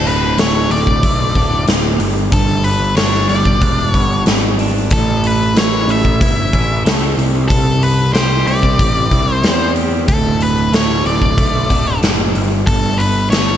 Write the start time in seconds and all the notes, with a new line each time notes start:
Already playing: D1 D2
0.07 B4, open hi-hat
0.38 D1 A3 C#5, snare, open hi-hat
0.70 D1 A2 D5, open hi-hat
0.87 kick
1.03 B1 A3, kick, open hi-hat
1.35 D1 D3, kick, open hi-hat
1.67 D1 A2, snare, open hi-hat
1.99 G1 G2, open hi-hat
2.32 G1 G2 A4, kick, open hi-hat
2.64 B4, open hi-hat
2.97 G1 D4 C#5, snare, open hi-hat
3.14 snare
3.29 G1 G3 D5, open hi-hat
3.45 kick
3.61 E1 D4, kick, open hi-hat
3.92 G1 B3 C#5, kick, open hi-hat
4.26 G#1 G3, snare, open hi-hat
4.59 D4, open hi-hat
4.91 A1 A2 A4, kick, open hi-hat
5.24 B4, open hi-hat
5.55 A1 E4 C#5, snare, open hi-hat
5.87 A1 A3 E5, open hi-hat
6.05 kick
6.21 G1 E4, kick, open hi-hat
6.53 A1 C#4, kick, open hi-hat
6.85 C#2 A3, snare, open hi-hat
7.17 C2 C3, open hi-hat
7.48 C2 C3 A4, kick, open hi-hat
7.83 B4, open hi-hat
8.13 C2 G4 C5, snare, open hi-hat
8.46 C2 C4 D5, open hi-hat
8.63 kick
8.79 A1 G4, kick, open hi-hat
9.11 C2 E4, kick, open hi-hat
9.32 C5
9.43 E2 C4, snare, open hi-hat
9.76 G4, open hi-hat
10.08 D1 D2 A4, kick, open hi-hat
10.41 B4, open hi-hat
10.72 D1 A3 C#5, snare, open hi-hat
11.05 D1 A2 D5, open hi-hat
11.22 kick
11.37 B1 A3, kick, open hi-hat
11.70 D1 D3, kick, open hi-hat
12.03 F#1 A2, snare, open hi-hat
12.35 G1 G2, open hi-hat
12.66 G1 G2 A4, kick, open hi-hat
12.98 B4, open hi-hat
13.30 G1 D4 C#5, snare, open hi-hat